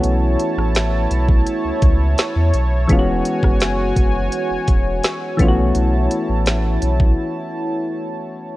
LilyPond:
<<
  \new Staff \with { instrumentName = "Analog synth pad" } { \time 4/4 \key b \mixolydian \tempo 4 = 84 << { <e' a''>1 | <fis' gis''>2.~ <fis' gis''>8 <e' a''>8~ | <e' a''>1 | } \\ { cis''1~ | cis''1~ | cis''1 | } >> }
  \new Staff \with { instrumentName = "Synth keys" } { \time 4/4 \key b \mixolydian <e a b cis' fis'>2.~ <e a b cis' fis'>8 r8 | <e gis b cis' f' fis'>2.~ <e gis b cis' f' fis'>8 <e a b cis' f' fis'>8~ | <e a b cis' f' fis'>2.~ <e a b cis' f' fis'>8 r8 | }
  \new Staff \with { instrumentName = "Sub bass" } { \clef bass \time 4/4 \key b \mixolydian b,,8 r16 a,,8. b,,8 r16 cis,16 cis,8 r16 e,16 b,,8 | e,,8 r16 fis,,8. fis,,8 r16 e,,16 e,,8 r8 b,,8 | b,,8 r16 a,,8. b,,8 r2 | }
  \new DrumStaff \with { instrumentName = "Drums" } \drummode { \time 4/4 hh8 hh16 ss16 <hh sn>8 hh16 bd16 hh8 <hh bd>8 <hh sn>8 hh8 | <hh bd>8 hh16 <bd ss>16 <hh sn>8 <hh bd>8 hh8 <hh bd>8 <hh sn>8 <hh bd>8 | hh8 hh8 <hh sn>8 hh16 bd16 r4 r4 | }
>>